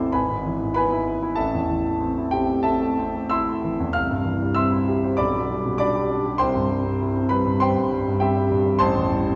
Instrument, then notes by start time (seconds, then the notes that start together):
grand piano
Already playing: A1 E2 C3 E3 A3 C4 E4 C5 D5 A5 C6 D6
0.00 A4
0.12 G#1 B4 G#5 B5
0.31 G#2
0.46 E3
0.62 G#2
0.74 B3 B4 G#5 B5
0.92 E4
1.08 B3
1.22 E4
1.36 A1 A4 E5 A5
1.54 E2
1.70 E3
1.86 A3
2.01 C4
2.18 E4
2.31 C4 G4 G5
2.49 A3
2.63 C4 A4 E5 A5
2.81 A3
2.99 C4
3.16 A3
3.30 E4 E5 C6 E6
3.48 A3
3.64 E3
3.80 E2
3.93 C2 F5 F6
4.11 G2
4.25 E3
4.42 G3
4.55 C4 E5 C6 E6
4.72 E4
4.89 G4
5.04 C5
5.17 B1 D5 B5 D6
5.35 B2
5.50 G3
5.66 B2
5.78 D4 D5 B5 D6
5.95 G4
6.11 D4
6.26 G4
6.38 C2 C5 G5 C6
6.56 G2
6.86 C4
7.01 E4
7.16 C4
7.29 G3 B4 B5
7.46 G2
7.60 G3 C5 G5 C6
7.78 G2
7.93 G3
8.07 G2
8.20 C4 G4 E5 G5
8.36 G3
8.51 G2
8.66 G3
8.79 A1 C5 A5 C6
8.97 E2
9.12 G3
9.28 C4